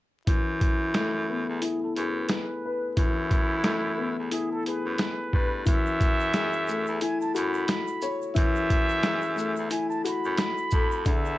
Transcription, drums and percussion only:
0.27 kick, closed hi-hat
0.61 kick, closed hi-hat
0.94 snare, closed hi-hat
1.62 closed hi-hat
1.96 closed hi-hat
2.29 snare, closed hi-hat
2.97 kick, closed hi-hat
3.31 kick, closed hi-hat
3.64 snare, closed hi-hat
4.31 closed hi-hat
4.66 closed hi-hat
4.98 snare, closed hi-hat
5.33 kick
5.67 kick, closed hi-hat, shaker
5.86 shaker
6.01 kick, closed hi-hat, shaker
6.20 shaker
6.34 snare, closed hi-hat, shaker
6.53 shaker
6.67 shaker
6.69 shaker
6.87 shaker
7.01 closed hi-hat, shaker
7.21 shaker
7.35 closed hi-hat, shaker
7.54 shaker
7.68 snare, closed hi-hat, shaker
7.87 shaker
8.02 shaker
8.22 shaker
8.36 kick, closed hi-hat, shaker
8.56 shaker
8.70 kick, closed hi-hat, shaker
8.89 shaker
9.03 snare, closed hi-hat, shaker
9.22 shaker
9.37 shaker
9.38 shaker
9.56 shaker
9.71 closed hi-hat, shaker
9.91 shaker
10.05 closed hi-hat, shaker
10.24 shaker
10.37 snare, closed hi-hat, shaker
10.57 shaker
10.71 kick, shaker
10.92 shaker
11.06 kick, closed hi-hat, shaker
11.25 shaker

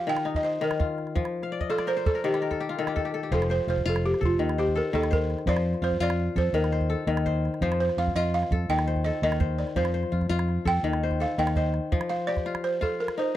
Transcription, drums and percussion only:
0.17 calabash click
0.26 calabash click
0.35 calabash thump
0.61 calabash click
0.71 calabash click
0.80 calabash thump
0.98 calabash click
1.07 calabash click
1.16 calabash thump
1.25 calabash click
1.43 calabash click
1.61 calabash thump
1.79 calabash click
2.06 calabash thump
2.24 calabash click
2.34 calabash click
2.43 calabash click
2.51 calabash thump, calabash click
2.87 calabash click
2.96 calabash thump
3.33 calabash thump, calabash click
3.42 calabash click
3.78 calabash thump
3.96 calabash click
4.14 calabash click
4.23 calabash thump
4.49 calabash click
4.59 calabash click
4.68 calabash thump
4.95 calabash click
5.03 calabash click
5.12 calabash thump
5.30 calabash click
5.39 calabash click
5.47 calabash thump, calabash click
5.57 calabash click
5.74 calabash click
5.92 calabash thump
6.10 calabash click
6.37 calabash thump
6.64 calabash click
6.73 calabash click
6.81 calabash thump
7.08 calabash click
7.17 calabash click
7.26 calabash thump
7.45 calabash click
7.54 calabash click
7.62 calabash thump, calabash click
7.72 calabash click
7.89 calabash click
8.08 calabash thump
8.43 calabash click
8.52 calabash thump
8.79 calabash click
8.88 calabash click
8.96 calabash thump
9.23 calabash click
9.32 calabash click
9.41 calabash thump
9.59 calabash click
9.67 calabash click
9.76 calabash thump
9.85 calabash click
10.03 calabash click
10.21 calabash thump, calabash click
10.39 calabash click
10.49 calabash click
10.66 calabash thump
10.93 calabash click
11.11 calabash thump, calabash click
11.38 calabash click
11.47 calabash click
11.56 calabash thump
11.74 calabash click
11.92 calabash thump
12.01 calabash click
12.37 calabash thump, calabash click
12.46 calabash click
12.55 calabash click
12.64 calabash click
12.82 calabash thump
13.08 calabash click

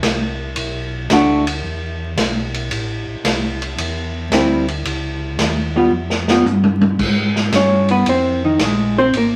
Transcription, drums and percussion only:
0.03 snare, hi-hat pedal, ride
0.56 ride
1.10 snare, hi-hat pedal, ride
1.47 ride
2.17 snare, hi-hat pedal, ride
2.54 ride
2.71 ride
3.25 snare, hi-hat pedal, ride
3.62 ride
3.78 ride
4.32 snare, hi-hat pedal, ride
4.68 ride
4.85 ride
5.39 snare, hi-hat pedal, ride
6.10 snare
6.28 snare
6.46 hi-hat pedal, high tom
6.64 high tom
6.81 high tom
6.99 kick, crash
7.36 snare
7.52 snare, hi-hat pedal, ride
7.88 ride
8.06 ride
8.59 snare, hi-hat pedal, ride
9.13 ride

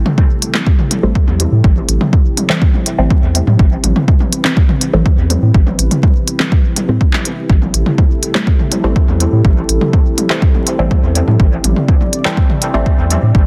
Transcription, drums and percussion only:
0.06 mid tom
0.18 kick, high tom
0.42 closed hi-hat
0.55 clap, high tom
0.67 kick
0.79 mid tom
0.91 closed hi-hat, high tom
1.15 kick
1.28 high tom
1.40 closed hi-hat
1.64 kick, high tom
1.89 closed hi-hat
2.01 mid tom, high tom
2.13 kick
2.37 closed hi-hat, high tom
2.50 clap
2.62 kick
2.74 high tom
2.86 closed hi-hat
3.10 kick, high tom
3.35 closed hi-hat
3.47 high tom
3.59 kick
3.84 closed hi-hat, high tom
3.96 mid tom
4.08 kick
4.20 high tom
4.33 closed hi-hat
4.45 clap
4.57 kick, high tom
4.69 mid tom
4.81 closed hi-hat
4.93 high tom
5.06 kick
5.30 closed hi-hat, high tom
5.54 kick
5.67 high tom
5.79 closed hi-hat
5.91 closed hi-hat, mid tom
6.03 kick, high tom
6.28 closed hi-hat
6.40 clap, high tom
6.52 kick
6.76 closed hi-hat, high tom
7.01 kick
7.13 clap, high tom
7.25 closed hi-hat
7.50 kick
7.62 high tom
7.74 closed hi-hat
7.86 mid tom
7.98 kick, high tom
8.23 closed hi-hat
8.35 clap, high tom
8.47 kick
8.59 mid tom
8.72 closed hi-hat, high tom
8.96 kick
9.08 high tom
9.20 closed hi-hat
9.45 kick, high tom
9.69 closed hi-hat
9.81 mid tom, high tom
9.93 kick
10.18 closed hi-hat, high tom
10.30 clap
10.42 kick
10.55 high tom
10.67 closed hi-hat
10.91 kick, high tom
11.15 closed hi-hat
11.28 high tom
11.40 kick
11.64 closed hi-hat, high tom
11.76 mid tom
11.88 kick
12.01 high tom
12.13 closed hi-hat
12.25 clap
12.37 kick, high tom
12.50 mid tom
12.62 closed hi-hat
12.74 high tom
12.86 kick
13.10 closed hi-hat, high tom
13.35 kick

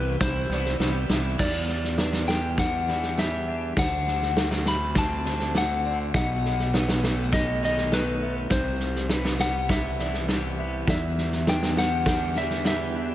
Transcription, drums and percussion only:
0.21 kick, snare
0.51 snare
0.65 snare
0.80 snare
1.09 snare
1.39 kick, snare, crash
1.69 snare
1.84 snare
1.98 snare
2.13 snare
2.29 snare
2.58 kick, snare
2.88 snare
3.03 snare
3.18 snare
3.77 kick, snare
4.07 snare
4.22 snare
4.37 snare
4.51 snare
4.66 snare
4.95 kick, snare
5.26 snare
5.40 snare
5.55 snare
6.14 kick, snare
6.45 snare
6.59 snare
6.74 snare
6.89 snare
7.04 snare
7.33 kick, snare
7.63 snare
7.77 snare
7.92 snare
8.50 kick, snare
8.80 snare
8.95 snare
9.09 snare
9.25 snare
9.40 snare
9.69 kick, snare
9.99 snare
10.14 snare
10.28 snare
10.88 kick, snare
11.18 snare
11.32 snare
11.47 snare
11.63 snare
11.77 snare
12.06 kick, snare
12.36 snare
12.50 snare
12.65 snare

